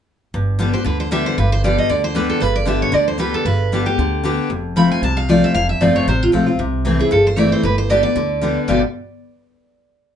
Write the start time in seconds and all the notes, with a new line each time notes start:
0.34 G1 G2
0.59 D3 G3 B3 G4
0.73 B3 G4 C5
0.84 D2 D3 B4
1.00 C5
1.11 D3 G3 B3 G4 E5
1.26 C5
1.38 G1 G2 B4
1.52 C5
1.64 D3 G3 B3 G4 D5
1.78 D#5
1.89 D2 D3 D5
2.04 C5
2.15 D3 G3 B3 G4 B4
2.30 A4
2.40 G1 G2 B4
2.56 D5
2.65 D3 G3 B3 G4 E5
2.82 C#5
2.92 D2 D3 D5
3.08 C5
3.18 D3 G3 B3 G4 B4
3.34 A4
3.45 G1 G2 B4
3.72 D3 G3 B3 G4
3.86 B3 G4
3.98 D2 D3
4.24 D3 G3 B3 G4
4.50 F1 F2
4.76 F3 A3 C4 F4 B5
4.91 G#5
5.02 C2 C3 A5
5.17 F5
5.29 F3 A3 C4 F4 D5
5.44 E5
5.54 F1 F2 F5
5.69 E5
5.81 G1 F3 A3 C4 F4 D5
5.96 C#5
6.07 A1 C3 C5
6.23 F4
6.32 B1 F3 A3 C4 F4
6.46 C4 F4
6.59 C2 C3
6.85 E3 A3 C4 E4
6.99 C4 E4 G#4
7.11 G1 G2 A4
7.27 C5
7.36 E3 A3 C4 E4 D5
7.52 C5
7.63 G1 G2 B4
7.78 C5
7.89 D3 G3 B3 G4 D5
8.03 B3 G4 D5
8.16 D2 D3
8.41 D3 G3 B3 G4
8.68 G1 G2 B2 D3 G3 B3 G4 D5